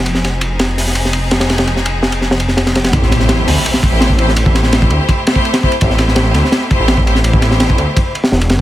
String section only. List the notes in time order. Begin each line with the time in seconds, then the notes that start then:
0.06 F3 C4 D#4 G#4
2.93 A3 E4 G4 C5
3.83 A3 E4 G4 C5
4.19 A3 E4 G4 C5
4.37 A3 E4 G4 C5
5.27 A3 E4 G4 C5
5.62 A3 E4 G4 C5
5.80 A3 E4 G4 C5
6.70 A3 E4 G4 C5
7.06 A3 E4 G4 C5
7.24 A3 E4 G4 C5